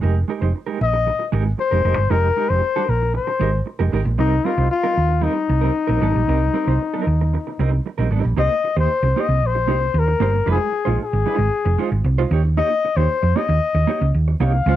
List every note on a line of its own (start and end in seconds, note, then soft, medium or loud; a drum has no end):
0.01 0.22 F1 medium
0.01 0.18 G#3 medium
0.01 0.18 D#4 medium
0.01 0.18 G4 medium
0.01 0.19 A#4 medium
0.28 0.41 G#3 medium
0.28 0.41 D#4 medium
0.28 0.40 G4 medium
0.28 0.41 A#4 medium
0.41 0.51 F1 medium
0.41 0.53 G#3 soft
0.41 0.54 D#4 soft
0.41 0.54 G4 soft
0.41 0.54 C5 soft
0.54 muted clean electric guitar stroke soft
0.67 0.79 G#3 medium
0.67 0.80 D#4 medium
0.67 0.80 G4 medium
0.67 0.81 A#4 medium
0.81 1.10 A#1 medium
0.81 1.30 D#5 loud
0.81 muted clean electric guitar stroke soft
0.93 muted clean electric guitar stroke soft
1.06 muted clean electric guitar stroke soft
1.19 muted clean electric guitar stroke medium
1.32 1.52 G#1 loud
1.32 1.48 G#3 medium
1.32 1.45 D#4 medium
1.32 1.45 G4 medium
1.32 1.44 A#4 medium
1.45 muted clean electric guitar stroke soft
1.58 2.12 C5 loud
1.58 muted clean electric guitar stroke soft
1.71 1.81 F1 medium
1.71 1.83 G#3 medium
1.71 1.84 D#4 soft
1.71 1.84 G4 medium
1.71 1.84 A#4 medium
1.84 1.94 F1 medium
1.84 2.00 G#3 medium
1.84 1.97 D#4 medium
1.84 1.96 G4 medium
1.84 1.95 A#4 medium
1.97 2.07 G1 medium
1.97 muted clean electric guitar stroke soft
2.10 2.30 F1 medium
2.10 2.26 G#3 medium
2.10 2.26 D#4 medium
2.10 2.27 G4 medium
2.10 2.50 A#4 loud
2.10 2.27 A#4 medium
2.36 2.49 G#3 medium
2.36 2.49 D#4 medium
2.36 2.49 G4 medium
2.36 2.50 A#4 medium
2.49 2.59 F1 medium
2.49 2.61 G#3 soft
2.49 2.62 D#4 soft
2.49 2.91 C5 medium
2.62 muted clean electric guitar stroke soft
2.76 2.88 G#3 medium
2.76 2.88 D#4 medium
2.76 2.89 G4 medium
2.76 2.89 A#4 medium
2.89 3.18 A#1 medium
2.89 3.15 A#4 medium
3.02 muted clean electric guitar stroke soft
3.14 3.64 C5 medium
3.14 muted clean electric guitar stroke soft
3.27 muted clean electric guitar stroke soft
3.39 3.60 G#1 loud
3.39 3.56 G#3 medium
3.39 3.53 D#4 medium
3.39 3.52 G4 medium
3.39 3.52 A#4 loud
3.53 muted clean electric guitar stroke soft
3.66 muted clean electric guitar stroke soft
3.79 3.89 F1 medium
3.79 3.91 G#3 medium
3.79 3.92 D#4 medium
3.79 3.92 G4 medium
3.79 3.92 A#4 medium
3.92 4.03 G#1 loud
3.92 4.09 G#3 medium
3.92 4.06 D#4 medium
3.92 4.06 G4 medium
3.92 4.04 A#4 medium
4.05 4.19 A#1 medium
4.05 muted clean electric guitar stroke soft
4.18 4.38 C2 loud
4.18 4.35 G3 medium
4.18 4.35 C4 medium
4.18 4.47 D#4 loud
4.18 4.35 D#4 medium
4.18 4.35 A#4 medium
4.45 4.57 G3 medium
4.45 4.58 C4 medium
4.45 4.57 D#4 medium
4.45 4.71 F4 medium
4.45 4.58 A#4 medium
4.58 4.67 C2 medium
4.58 4.69 G3 soft
4.58 4.70 C4 soft
4.58 4.70 D#4 medium
4.58 4.71 C5 medium
4.71 5.24 F4 loud
4.71 muted clean electric guitar stroke soft
4.83 4.95 G3 medium
4.83 4.95 C4 medium
4.83 4.95 D#4 medium
4.83 4.96 A#4 medium
4.96 5.26 D#2 medium
4.96 muted clean electric guitar stroke soft
5.09 muted clean electric guitar stroke soft
5.21 5.38 G3 medium
5.21 5.36 C4 medium
5.21 7.85 D#4 medium
5.21 5.35 D#4 medium
5.21 5.34 A#4 medium
5.35 muted clean electric guitar stroke soft
5.49 5.69 C2 medium
5.49 muted clean electric guitar stroke soft
5.61 5.74 G3 soft
5.61 5.74 C4 medium
5.61 5.74 D#4 medium
5.61 5.74 A#4 medium
5.76 muted clean electric guitar stroke soft
5.87 5.98 A#1 medium
5.87 6.00 G3 soft
5.87 6.00 C4 medium
5.87 6.01 D#4 medium
5.87 6.01 A#4 medium
6.01 6.12 G#1 loud
6.01 6.21 G3 medium
6.01 6.14 C4 medium
6.01 6.14 D#4 medium
6.01 6.13 A#4 medium
6.14 6.25 A#1 medium
6.14 muted clean electric guitar stroke soft
6.27 6.48 C2 medium
6.27 6.44 G3 medium
6.27 6.44 C4 medium
6.27 6.44 D#4 medium
6.27 6.45 A#4 medium
6.53 6.66 G3 medium
6.53 6.67 C4 medium
6.53 6.67 D#4 medium
6.53 6.67 A#4 medium
6.67 6.77 C2 medium
6.67 6.80 G3 soft
6.67 6.80 C4 medium
6.67 6.80 D#4 medium
6.67 6.80 C5 medium
6.81 muted clean electric guitar stroke soft
6.94 7.06 G3 medium
6.94 7.07 C4 medium
6.94 7.07 D#4 medium
6.94 7.07 A#4 medium
7.07 7.36 D#2 medium
7.07 muted clean electric guitar stroke soft
7.21 muted clean electric guitar stroke soft
7.34 muted clean electric guitar stroke soft
7.47 muted clean electric guitar stroke soft
7.59 7.78 C2 medium
7.59 7.75 G3 medium
7.59 7.72 C4 medium
7.59 7.71 D#4 medium
7.59 7.71 A#4 medium
7.72 muted clean electric guitar stroke soft
7.86 muted clean electric guitar stroke soft
7.98 8.08 A#1 medium
7.98 8.09 G3 medium
7.98 8.10 C4 medium
7.98 8.11 D#4 medium
7.98 8.10 A#4 medium
8.10 8.20 G#1 medium
8.10 8.31 G3 medium
8.10 8.24 C4 medium
8.10 8.23 D#4 medium
8.10 8.23 A#4 medium
8.24 8.34 A#1 medium
8.24 muted clean electric guitar stroke soft
8.37 8.47 C2 loud
8.37 8.53 A#3 medium
8.37 8.51 D#4 medium
8.37 8.51 G4 loud
8.37 8.50 C5 loud
8.37 8.75 D#5 loud
8.51 muted clean electric guitar stroke soft
8.64 muted clean electric guitar stroke soft
8.76 8.86 D#2 medium
8.76 8.90 A#3 medium
8.76 8.90 D#4 medium
8.76 8.89 G4 medium
8.76 8.89 C5 medium
8.76 9.22 C5 loud
9.03 9.12 C2 medium
9.03 muted clean electric guitar stroke medium
9.16 9.32 A#3 medium
9.16 9.29 D#4 medium
9.16 9.29 G4 medium
9.16 9.28 C5 medium
9.16 9.48 D#5 medium
9.29 9.42 C2 medium
9.42 9.68 A#1 medium
9.46 10.00 C5 loud
9.55 muted clean electric guitar stroke soft
9.67 9.88 C2 loud
9.67 9.84 A#3 medium
9.67 9.82 D#4 medium
9.67 9.81 G4 medium
9.67 9.80 C5 medium
9.81 muted clean electric guitar stroke soft
9.94 10.14 D#2 medium
9.99 10.49 A#4 loud
10.08 muted clean electric guitar stroke soft
10.20 10.40 G1 medium
10.20 10.37 A#3 medium
10.20 10.33 D#4 medium
10.20 10.33 G4 medium
10.20 10.32 C5 loud
10.33 muted clean electric guitar stroke soft
10.46 10.57 F1 loud
10.46 10.66 G#3 medium
10.46 10.60 D#4 medium
10.46 10.60 F4 medium
10.46 10.59 C5 loud
10.51 10.98 G#4 loud
10.61 muted clean electric guitar stroke soft
10.72 muted clean electric guitar stroke soft
10.85 10.96 A#1 medium
10.85 10.99 G#3 medium
10.85 10.99 D#4 medium
10.85 10.99 F4 medium
10.85 10.98 C5 medium
11.03 12.02 G#4 medium
11.13 11.23 G#1 medium
11.13 muted clean electric guitar stroke soft
11.26 11.46 G#3 medium
11.26 11.39 D#4 medium
11.26 11.39 F4 medium
11.26 11.38 C5 medium
11.38 11.48 G#1 medium
11.38 muted clean electric guitar stroke soft
11.65 11.75 F1 medium
11.65 muted clean electric guitar stroke soft
11.78 11.94 G#3 medium
11.78 11.92 D#4 medium
11.78 11.91 F4 medium
11.78 11.91 C5 medium
11.92 12.01 G#1 medium
11.92 muted clean electric guitar stroke soft
12.04 12.24 C2 medium
12.04 muted clean electric guitar stroke soft
12.18 12.31 G#3 medium
12.18 12.31 D#4 medium
12.18 12.32 F4 medium
12.18 12.33 C5 medium
12.31 12.60 D#2 loud
12.31 12.44 A#3 medium
12.31 12.44 D#4 medium
12.31 12.44 G4 medium
12.31 12.44 C#5 medium
12.45 muted clean electric guitar stroke soft
12.57 12.73 A#3 medium
12.57 12.71 D#4 loud
12.57 12.70 G4 medium
12.57 12.70 C#5 medium
12.57 12.98 D#5 loud
12.71 muted clean electric guitar stroke soft
12.85 muted clean electric guitar stroke soft
12.97 13.06 D#2 medium
12.97 13.10 A#3 soft
12.97 13.10 D#4 soft
12.97 13.09 G4 soft
12.97 13.38 C5 loud
12.97 13.09 C#5 medium
13.23 13.32 F2 medium
13.23 muted clean electric guitar stroke soft
13.36 13.52 A#3 medium
13.36 13.48 D#4 medium
13.36 13.48 G4 medium
13.36 13.47 C#5 loud
13.36 14.15 D#5 loud
13.49 13.58 D#2 loud
13.49 muted clean electric guitar stroke soft
13.74 13.84 D#2 medium
13.74 muted clean electric guitar stroke medium
13.87 14.04 A#3 medium
13.87 14.02 D#4 medium
13.87 14.01 G4 medium
13.87 14.00 C#5 medium
14.01 14.11 C#2 medium
14.01 muted clean electric guitar stroke soft
14.14 14.34 D#2 medium
14.28 muted clean electric guitar stroke soft
14.40 14.60 C2 medium
14.40 14.57 A#3 medium
14.40 14.54 D#4 loud
14.40 14.54 G4 loud
14.40 14.52 C#5 loud
14.40 14.76 F5 loud
14.54 muted clean electric guitar stroke soft
14.66 14.76 C#2 loud
14.66 14.76 G#3 loud
14.66 14.76 C#4 medium
14.66 14.76 F4 loud
14.66 14.76 C5 loud